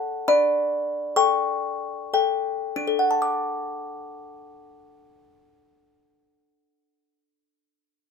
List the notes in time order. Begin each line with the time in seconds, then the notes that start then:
Already playing: A4 F#5 A5
0.28 D4 D5 B5
1.16 A4 G5 C#6
2.14 A4 G5
2.76 D4
2.87 A4
2.99 F#5
3.11 A5
3.22 D6